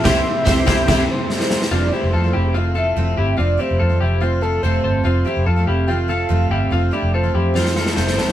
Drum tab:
CC |x-------x-------|----------------|----------------|----------------|
SD |o---o-o-o---oooo|----------------|----------------|----------------|
BD |o---o-o-o-------|----------------|----------------|----------------|

CC |----------------|
SD |--------oooooooo|
BD |----------------|